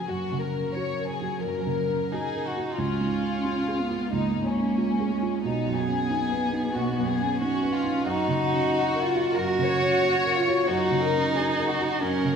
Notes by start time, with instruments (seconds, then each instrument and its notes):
Already playing: felt piano F#2 C#3 C#4 F#4 A#4
0.07 felt piano F#2, cello F#3, violin section F#4
0.32 felt piano C#3
0.41 violin section A#4
0.54 felt piano C#4
0.74 felt piano F#4, violin section C#5
0.99 felt piano A#4
1.08 violin section G#4
1.22 felt piano F#4
1.42 felt piano F#2, violin section A#4
1.67 felt piano C#3
1.89 felt piano C#4
2.12 cello D#4, felt piano F#4, violin section G#4
2.34 felt piano A#4
2.45 violin section F#4
2.56 felt piano F#4
2.78 felt piano C#2, cello C#4, violin section F4
3.01 felt piano G#2
3.23 felt piano C#4
3.45 felt piano F4
3.67 felt piano G#4
3.80 cello B3
3.90 felt piano F4
4.12 felt piano C#2, cello A#3, violin section D#4
4.34 felt piano G#2
4.45 violin section C#4
4.56 felt piano C#4
4.78 felt piano F4
5.00 felt piano G#4
5.11 cello G#3
5.22 felt piano F4
5.44 felt piano B1, cello B3, violin section D#4
5.67 felt piano F#2
5.77 violin section G#4
5.87 felt piano C#4
6.10 felt piano D#4
6.32 felt piano B4
6.53 felt piano D#4
6.75 felt piano B1, violin section F#4
6.98 felt piano F#2
7.07 violin section G#4
7.20 felt piano C#4
7.40 cello C#4, felt piano D#4, violin section F#4
7.63 felt piano B4
7.74 violin section F4
7.84 felt piano D#4
8.06 felt piano F#2, cello D#4, violin section F#4
8.28 felt piano C#3
8.39 violin section F#4
8.49 felt piano C#4
8.73 felt piano F#4
8.94 felt piano A#4
9.02 cello F4
9.15 felt piano F#4
9.36 felt piano F#2, cello F#4, violin section A#4
9.59 felt piano C#3
9.68 violin section C#5
10.03 felt piano F#4
10.25 felt piano A#4
10.35 cello F4
10.47 felt piano F#4
10.67 felt piano F#2, cello D#4, violin section F#4
10.91 felt piano C#3
11.01 violin section A#4
11.13 felt piano C#4
11.35 felt piano F#4, violin section G#4
11.58 felt piano A#4
11.69 violin section F#4
11.81 felt piano F#4
12.02 felt piano F#2, cello C#4, violin section A#4
12.25 felt piano C#3